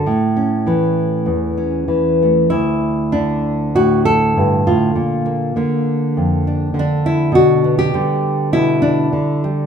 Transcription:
Already playing: A4
0.06 A2
0.37 C#4
0.66 E3 A3
1.26 E2
1.57 C#4
1.88 E3
2.23 A3
2.50 D2 E4
3.12 D3 D4
3.75 A2 F#4
4.05 A4
4.37 G2
4.67 A2 F4
4.95 A#2
5.26 A#3
5.56 D3 A#3
6.17 F2
6.47 D4
6.74 D3
6.79 D4
7.06 E4
7.32 B2 F#4
7.64 B3
7.79 G4
7.94 D3 G3
8.52 B2 E4
8.82 D4
9.13 D3
9.44 G3

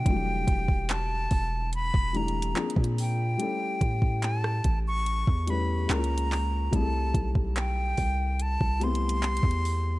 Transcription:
Already playing: G5
0.05 E1 E3 F#3 A3 D4, kick, closed hi-hat
0.09 F#3 G3
0.47 E1, kick, closed hi-hat
0.68 kick
0.89 A5, clap, closed hi-hat
1.31 E1, kick, open hi-hat
1.73 B5, closed hi-hat
1.94 E1, kick
2.13 E3 G3 A3 D4 A#5, closed hi-hat
2.17 E4
2.28 closed hi-hat
2.42 closed hi-hat
2.54 F3 A#3 C4 D4, clap, closed hi-hat
2.59 G#4
2.70 closed hi-hat
2.76 A#2, kick
2.84 closed hi-hat
2.98 G5, open hi-hat
3.37 G3 A3 C#4 E4, closed hi-hat
3.42 A4
3.81 A2, kick, closed hi-hat
4.02 kick
4.22 A5, clap, closed hi-hat
4.44 cross-stick
4.64 A1, kick, closed hi-hat
4.87 C#6
5.06 closed hi-hat
5.27 E2, kick
5.47 G3 A3 C#4 E4 B5, closed hi-hat
5.51 B4
5.88 C#2 G#3 A#3 C#4 E4 A#5, clap, closed hi-hat
5.92 A#4
5.98 F4
6.04 closed hi-hat
6.18 closed hi-hat
6.32 clap, open hi-hat
6.71 C2 G3 A3 C4 E4, kick, closed hi-hat
6.75 G#4 A5
6.82 A4
7.14 B1, kick, closed hi-hat
7.35 kick
7.56 G5, clap, closed hi-hat
7.97 C2, kick, open hi-hat
8.40 A5, closed hi-hat
8.61 C2, kick
8.80 G3 A3 C4 E4, closed hi-hat
8.84 B3 C6
8.95 closed hi-hat
9.09 closed hi-hat
9.23 clap, closed hi-hat
9.37 closed hi-hat
9.43 E2, kick
9.51 closed hi-hat
9.65 open hi-hat

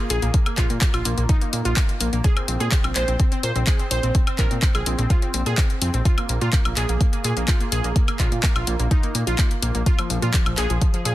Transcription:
0.10 A#1 G#4, open hi-hat
0.22 A#1 A#3, closed hi-hat
0.34 A#3, kick, closed hi-hat
0.46 A#3, closed hi-hat, high woodblock
0.57 A#1 F4, kick, clap, open hi-hat
0.70 A#2 A#3, closed hi-hat
0.81 A#3, kick, clap, closed hi-hat
0.94 A#1 F4, closed hi-hat, high woodblock
1.05 A#1 A#3, open hi-hat
1.18 A#1 A#3, closed hi-hat
1.29 D#4, kick, closed hi-hat
1.41 A#3, closed hi-hat
1.53 A#2 A#3, open hi-hat
1.65 A#1 F4, closed hi-hat
1.76 A#3, kick, clap, closed hi-hat
1.89 closed hi-hat
2.01 A#1 A#3, open hi-hat
2.13 A#1 A#3, closed hi-hat
2.24 G#4, kick, closed hi-hat
2.37 C4, closed hi-hat, high woodblock
2.48 A#1 C4, open hi-hat
2.60 A#2 G#4, closed hi-hat
2.72 C4, kick, clap, closed hi-hat
2.84 A#1 C4, closed hi-hat, high woodblock
2.95 A#1 C5, clap, open hi-hat
3.08 A#1 C4, closed hi-hat
3.20 C4, kick, closed hi-hat
3.32 C4, closed hi-hat
3.43 A#2 C5, open hi-hat
3.56 A#1 C4, closed hi-hat
3.67 G#4, kick, clap, closed hi-hat
3.79 C4, closed hi-hat
3.91 A#1 C5, open hi-hat
4.03 A#1 C4, closed hi-hat
4.15 C4, kick, closed hi-hat
4.27 C4, closed hi-hat, high woodblock
4.38 A#1 A#4, kick, clap, open hi-hat
4.51 A#2 C4, closed hi-hat
4.62 C4, kick, clap, closed hi-hat
4.75 A#1 G#4, closed hi-hat, high woodblock
4.86 A#1 C4, open hi-hat
4.99 A#1 C4, closed hi-hat
5.10 F4, kick, closed hi-hat
5.22 C4, closed hi-hat
5.34 A#1 C4, open hi-hat
5.46 A#2 G#4, closed hi-hat
5.58 C4, kick, clap, closed hi-hat
5.70 closed hi-hat
5.82 F2 C4, open hi-hat
5.94 A#1 C4, closed hi-hat
6.05 F4, kick, closed hi-hat
6.18 A#3, closed hi-hat, high woodblock
6.29 A#1 A#3, open hi-hat
6.41 A#2 F4, closed hi-hat
6.53 A#3, kick, clap, closed hi-hat
6.65 A#1 A#3, closed hi-hat, high woodblock
6.77 A#1 G#4, clap, open hi-hat
6.89 A#1 A#3, closed hi-hat
7.01 A#3, kick, closed hi-hat
7.13 A#3, closed hi-hat
7.24 A#2 G#4, open hi-hat
7.37 A#1 A#3, closed hi-hat
7.48 F4, kick, clap, closed hi-hat
7.60 A#3, closed hi-hat
7.72 A#1 G#4, open hi-hat
7.84 A#1 A#3, closed hi-hat
7.96 A#3, kick, closed hi-hat
8.08 A#3, closed hi-hat, high woodblock
8.19 A#1 F4, kick, clap, open hi-hat
8.32 A#2 A#3, closed hi-hat
8.43 A#3, kick, clap, closed hi-hat
8.56 A#1 F4, closed hi-hat, high woodblock
8.67 A#1 A#3, open hi-hat
8.79 A#1 A#3, closed hi-hat
8.91 D#4, kick, closed hi-hat
9.03 A#3, closed hi-hat
9.15 A#2 A#3, open hi-hat
9.27 A#1 F4, closed hi-hat
9.38 A#3, kick, clap, closed hi-hat
9.51 closed hi-hat
9.62 A#1 A#3, open hi-hat
9.75 A#1 A#3, closed hi-hat
9.86 F4, kick, closed hi-hat
9.99 F3, closed hi-hat, high woodblock
10.10 A#1 F3, open hi-hat
10.22 A#2 F4, closed hi-hat
10.34 F3, kick, clap, closed hi-hat
10.46 A#1 F3, closed hi-hat, high woodblock
10.58 A#1 G#4, clap, open hi-hat
10.70 A#1 F3, closed hi-hat
10.82 F3, kick, closed hi-hat
10.94 F3, closed hi-hat
11.05 A#2 G#4, open hi-hat

